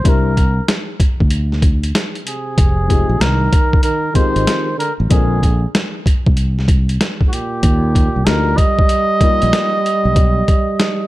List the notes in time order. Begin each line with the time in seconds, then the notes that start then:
Already playing: C5
0.04 C2 G3 C4 D4 E4 A#4, kick, closed hi-hat
0.09 A#4
0.37 kick, closed hi-hat
0.68 snare, closed hi-hat
1.00 kick, closed hi-hat
1.20 D2, kick
1.30 closed hi-hat
1.52 snare
1.62 kick, closed hi-hat
1.83 closed hi-hat
1.95 snare, closed hi-hat
2.15 closed hi-hat
2.26 C3 G#4, closed hi-hat
2.58 F1, kick, closed hi-hat
2.88 G#3 C4 D#4 F4 G4, kick, closed hi-hat
3.09 A#1
3.20 C2 D#3 A#4, snare, closed hi-hat
3.53 kick, closed hi-hat
3.73 kick
3.82 D#3 A#4, closed hi-hat
4.13 D#3 G#3 C4 D#4 C5, kick, closed hi-hat
4.17 F4 G4
4.36 G#1, closed hi-hat
4.47 snare, closed hi-hat
4.78 D3 A#4, closed hi-hat
5.00 A1
5.09 A#1 D3 G#3 C4 D4 F4 G#4 A#4, kick, closed hi-hat
5.43 kick, closed hi-hat
5.75 snare, closed hi-hat
6.06 kick, closed hi-hat
6.26 C2, kick
6.37 closed hi-hat
6.59 snare
6.68 kick, closed hi-hat
6.89 closed hi-hat
7.01 snare, closed hi-hat
7.21 kick
7.27 G#2 F#4
7.32 A#2 G4, closed hi-hat
7.63 D#2, kick, closed hi-hat
7.95 kick, closed hi-hat
8.16 C2
8.25 D2 D3 G3 D4 D#4 F4 A#4, snare, closed hi-hat
8.57 G3 D#5, kick, closed hi-hat
8.79 kick
8.89 closed hi-hat
9.20 G3 A#3 D#4 F4 A#4, kick, closed hi-hat
9.42 A#1, closed hi-hat
9.53 snare, closed hi-hat
9.86 closed hi-hat
10.05 B1
10.16 kick, closed hi-hat
10.48 kick, closed hi-hat
10.80 snare, closed hi-hat